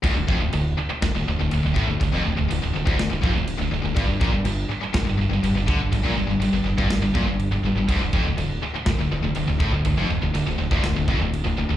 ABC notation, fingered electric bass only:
X:1
M:4/4
L:1/16
Q:1/4=122
K:Dm
V:1 name="Fingered electric bass" clef=bass
D,,, D,,, F,,, D,,, D,,,2 z2 D,,, D,,, D,,, D,,, D,,, D,,, A,,, D,,, | D,,, F,,, D,,, D,,, D,,, D,,, D,,, D,,, D,,, D,,, F,,, D,,,2 D,,, D,,, D,,, | G,,, G,,, B,,, G,,, G,,,2 z2 G,,, G,,, G,,, G,,, G,,, G,,, D,, G,,, | G,,, B,,, G,,, G,,, G,,, G,,, G,,, G,,, G,,, G,,, B,,, G,,,2 G,,, G,,, G,,, |
D,,, D,,, F,,, D,,, D,,,2 z2 D,,, D,,, D,,, D,,, D,,, D,,, A,,, D,,, | D,,, F,,, D,,, D,,, D,,, D,,, D,,, D,,, D,,, D,,, F,,, D,,,2 D,,, D,,, D,,, |]